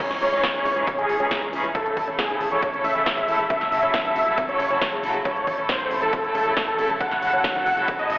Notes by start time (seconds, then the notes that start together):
0.00 E3 C#4 D#4 G#4 C#5
0.11 C#2 G#2, snare, closed hi-hat
0.22 C#2 C#3 E3 C#4 D#4 G#4 C#5, open hi-hat
0.32 C#2 E3 C#4 D#4 G#4, closed hi-hat
0.43 E3, kick, snare, closed hi-hat
0.54 C#2 D#3 E3 C#4 D#4 G#4 C#5, closed hi-hat
0.65 C#2 C3, open hi-hat
0.76 C#2 E3 G#3 C#4 D#4 G#4, closed hi-hat
0.87 C3, kick, closed hi-hat
0.98 G#1 C#3 E3 C#4 D#4 G#4, closed hi-hat
1.09 C#2 C#3, open hi-hat
1.20 C#2 E3 C#4 D#4 G#4, closed hi-hat
1.31 E3 C#4 D#4 G#4, kick, snare, closed hi-hat
1.42 C#2 G#3, closed hi-hat
1.53 C#2 C#3 E3 C#4 D#4 G#4, open hi-hat
1.64 C#2 G#3, closed hi-hat
1.75 C#3 A3 E4 A4, kick, closed hi-hat
1.86 A1 G#2, closed hi-hat
1.97 A1 C#3 A3 E4 A4, kick, open hi-hat
2.08 A1 C#3 A3 C#4 E4 A4, closed hi-hat
2.19 E3 G#4, kick, snare, closed hi-hat
2.30 A1 C#3 D#3 A3 E4 A4, closed hi-hat
2.40 A1 C3, open hi-hat
2.51 A1 C#3 G#3 A3 E4 A4 C#5, closed hi-hat
2.62 C3, kick, closed hi-hat
2.73 E1 C#3 A3 E4 A4, closed hi-hat
2.84 A1 C#3 E5, open hi-hat
2.95 A1 C#3 A3 C#4 E4 A4, closed hi-hat
3.06 C#3 E3 A3 E4 A4, kick, snare, closed hi-hat
3.17 A1 G#3 E5, closed hi-hat
3.28 A1 C#3 A3 E4 A4, open hi-hat
3.39 A1 G#3, closed hi-hat
3.50 C#3 F#3 E4 A4 E5, kick, closed hi-hat
3.61 F#1 G#2, snare, closed hi-hat
3.72 F#1 C#3 F#3 E4 A4 E5, open hi-hat
3.83 F#1 C#3 F#3 C#4 E4 A4, closed hi-hat
3.94 E3, kick, snare, closed hi-hat
4.05 F#1 C#3 D#3 F#3 E4 A4 E5, closed hi-hat
4.16 F#1 C3, open hi-hat
4.27 F#1 C#3 F#3 G#3 E4 A4, closed hi-hat
4.38 C3, kick, closed hi-hat
4.49 E1 C#3 F#3 E4 A4 C#5, closed hi-hat
4.60 F#1 C#3, open hi-hat
4.70 F#1 C#3 F#3 C#4 E4 A4, closed hi-hat
4.81 C#3 E3 F#3 E4 A4, kick, snare, closed hi-hat
4.92 F#1 G#3, closed hi-hat
5.03 F#1 C#3 F#3 E4 A4, open hi-hat
5.14 F#1 G#3, closed hi-hat
5.25 C#3 A3 E4 A4 C#5, kick, closed hi-hat
5.36 A1 G#2, closed hi-hat
5.47 A1 C#3 A3 E4 A4, kick, open hi-hat
5.58 A1 C#3 A3 C#4 E4 A4, closed hi-hat
5.69 E3 C5, kick, snare, closed hi-hat
5.80 A1 C#3 D#3 A3 E4 A4, closed hi-hat
5.91 A1 C3, open hi-hat
6.02 A1 C#3 G#3 A3 E4 A4, closed hi-hat
6.13 C3, kick, closed hi-hat
6.24 E1 C#3 A3 E4 A4, closed hi-hat
6.35 A1 G#3 A4, open hi-hat
6.46 A1 C#3 A3 E4 A4
6.57 C#3 G#3 A3 E4 A4, kick, snare, closed hi-hat
6.68 A1 E3 A4, closed hi-hat
6.79 A1 C3 C#3 A3 E4 A4, open hi-hat
6.90 A1 G#2, closed hi-hat
7.00 C#3 F#3 E4 A4 F#5, kick, closed hi-hat
7.11 F#1 G#2, snare, closed hi-hat
7.22 F#1 C#3 F#3 E4 A4 F#5, open hi-hat
7.33 F#1 C#3 F#3 C#4 E4 A4, closed hi-hat
7.44 E3, kick, snare, closed hi-hat
7.55 F#1 C#3 D#3 F#3 E4 A4 F#5, closed hi-hat
7.66 F#1 C3, open hi-hat
7.77 F#1 C#3 F#3 G#3 E4 A4, closed hi-hat
7.88 G#3, kick, closed hi-hat
7.99 E1 C#3 F#3 E4 A4 D#5, closed hi-hat
8.10 F#1 C#3, open hi-hat